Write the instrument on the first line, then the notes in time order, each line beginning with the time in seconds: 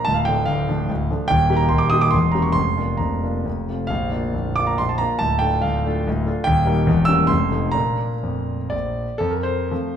grand piano
0.05 D1 D2 A5
0.14 F5
0.25 F3 A3 D4 G5
0.46 D1 D2 F5
0.69 F3 A3 D4
0.90 D1 D2
1.11 F3 A3 D4
1.28 D#1 D#2 G5
1.49 A#3 D#4 G4
1.57 A#5
1.69 D#1 D#2 C6
1.78 D6
1.90 A#3 D#4 G4 D#6
2.01 D6
2.11 E1 E2 C6
2.32 A#3 C#4 G4 A#5
2.42 C#6
2.52 F1 F2 C6
2.76 A#3 D4 F4
2.97 F1 F2 A#5
3.24 A#3 D4 F4
3.45 F1 F2
3.69 A3 C4 F4
3.87 A#0 A#1 F5
4.11 A#3 D4 F4
4.34 A#0 A#1
4.56 A#3 D4 F4 D6
4.67 A#5
4.78 A#0 A#1 C6
4.89 A5
4.98 A#3 D4 F4 A#5
5.19 D1 D2 A5
5.39 A3 D4 F4 G5
5.62 D1 D2 F5
5.86 A3 D4 F4
6.07 D1 D2
6.26 A3 D4 F4
6.44 D#1 D#2 G5
6.66 G3 A#3 D#4
6.86 E1 E2
7.05 G3 A#3 C#4 E6
7.27 F1 F2 C6
7.51 F3 A3 D#4
7.72 A#2 A#3 D4 A#5
8.23 F2
8.70 A#1 D5
9.18 F2 A4
9.30 A#4
9.43 C5
9.71 F3 A3 C4